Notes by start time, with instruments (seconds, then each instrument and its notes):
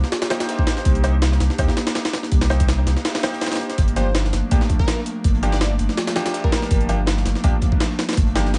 Already playing: analog synth pad A#3 D4 D#4 G4
0.04 snare
0.12 snare, closed hi-hat
0.22 snare, closed hi-hat
0.30 grand piano A#3 D#4 G4 C5, snare, closed hi-hat, open hi-hat
0.40 analog synth pad A#3 D4 D#4 G4, snare, closed hi-hat
0.49 snare, closed hi-hat
0.59 kick
0.67 analog synth pad A#3 D4 D#4 G4, snare, closed hi-hat
0.77 snare
0.85 sub bass C2, analog synth pad A#3 D4 D#4 G4, kick, closed hi-hat
0.95 closed hi-hat
1.03 grand piano A#3 D#4 G4 C5, closed hi-hat
1.13 analog synth pad A#3 D4 D#4 G4
1.22 snare, closed hi-hat
1.32 snare
1.40 sub bass C2, snare, closed hi-hat
1.50 snare
1.58 sub bass D#2, grand piano A#3 D#4 G4 C5, kick, closed hi-hat
1.68 snare
1.77 snare, closed hi-hat
1.87 snare, closed hi-hat
1.95 snare, closed hi-hat
2.05 snare, closed hi-hat
2.13 snare, closed hi-hat
2.23 snare
2.32 sub bass C2, analog synth pad A#3 D4 D#4 G4, kick, closed hi-hat
2.41 snare, closed hi-hat
2.49 grand piano A#3 D#4 G4 C5, snare, closed hi-hat
2.60 analog synth pad A#3 D4 D#4 G4, kick, closed hi-hat
2.68 snare, closed hi-hat
2.87 sub bass C2, snare, closed hi-hat
2.97 snare
3.04 snare, closed hi-hat
3.10 snare, closed hi-hat
3.15 snare, closed hi-hat
3.19 snare, closed hi-hat
3.23 grand piano A#3 D#4 G4 C5, snare, closed hi-hat, open hi-hat
3.33 analog synth pad A#3 D4 D#4 G4, snare
3.41 snare, closed hi-hat
3.46 snare, closed hi-hat
3.52 snare, closed hi-hat
3.56 snare, closed hi-hat
3.59 analog synth pad A#3 D4 D#4 G4, snare, closed hi-hat
3.70 snare, closed hi-hat
3.78 sub bass G1, analog synth pad F3 A3 A#3 D4, kick, closed hi-hat
3.88 closed hi-hat
3.96 grand piano F3 A#3 D4 G4, digital synth lead C5, closed hi-hat
4.06 analog synth pad F3 A3 A#3 D4
4.14 snare, closed hi-hat
4.25 snare
4.33 sub bass G1, snare, closed hi-hat
4.51 sub bass A#1, grand piano F3 A#3 D4 G4, kick, closed hi-hat
4.61 snare
4.69 kick, closed hi-hat
4.79 digital synth lead A#4, kick
4.87 snare, closed hi-hat
4.98 snare
5.06 closed hi-hat
5.24 sub bass G1, analog synth pad F3 A3 A#3 D4, kick, closed hi-hat
5.35 closed hi-hat
5.43 grand piano F3 A#3 D4 G4, closed hi-hat
5.52 analog synth pad F3 A3 A#3 D4, digital synth lead D5, snare
5.61 snare, closed hi-hat
5.79 sub bass G1, closed hi-hat
5.89 snare
5.97 snare, closed hi-hat
6.07 snare, closed hi-hat
6.15 grand piano F3 A#3 D4 G4, snare, closed hi-hat, open hi-hat
6.26 analog synth pad F3 A3 A#3 D4, snare, closed hi-hat
6.34 snare, closed hi-hat
6.44 digital synth lead A#4, kick
6.52 analog synth pad F3 A3 A#3 D4, snare, closed hi-hat
6.62 snare
6.70 sub bass G1, analog synth pad F3 A3 A#3 D4, kick, closed hi-hat
6.81 closed hi-hat
6.89 grand piano F3 A#3 D4 G4, closed hi-hat
6.99 analog synth pad F3 A3 A#3 D4
7.06 snare, closed hi-hat
7.17 snare
7.26 sub bass G1, snare, closed hi-hat
7.35 snare
7.44 sub bass A#1, grand piano F3 A#3 D4 G4, kick, closed hi-hat
7.62 kick, closed hi-hat
7.72 kick
7.80 snare, closed hi-hat
7.90 snare
7.99 snare, closed hi-hat
8.09 snare, closed hi-hat
8.13 snare, closed hi-hat
8.17 sub bass G1, analog synth pad F3 A3 A#3 D4, kick, closed hi-hat
8.27 closed hi-hat
8.35 grand piano F3 A#3 D4 G4, snare, closed hi-hat
8.45 analog synth pad F3 A3 A#3 D4, snare
8.54 snare, closed hi-hat